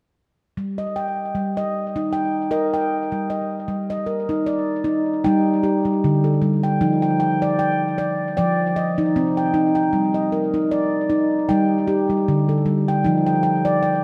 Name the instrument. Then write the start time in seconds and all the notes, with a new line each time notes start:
handpan
0.57 G3
0.78 D#5
0.96 G5
1.35 G3
1.57 D#5
1.96 D#4
2.13 G5
2.51 A#4 D#5
2.74 G5
3.12 G3
3.30 D#5
3.68 G3
3.90 D#5
4.06 A#4
4.29 D#4
4.46 D5
4.84 D#4
5.24 G3 D#4 G5
5.63 G4
5.85 G3
6.04 D3
6.24 A4
6.42 G3
6.63 G5
6.81 F3 D#4
7.02 G5
7.20 G5
7.42 D5
7.59 G5
7.98 D5
8.37 F3 D5 G5
8.76 D#5
8.98 D#4
9.16 C4
9.37 G5
9.54 D#4
9.75 G5
9.93 G3
10.14 D#5
10.32 A#4
10.54 D#4
10.71 D5
11.10 D#4
11.49 G3 D#4 G5
11.88 G4
12.10 G3
12.28 D3
12.49 A4
12.66 G3
12.88 G5
13.04 F3 D#4
13.26 G5
13.43 G5
13.65 D5
13.83 G5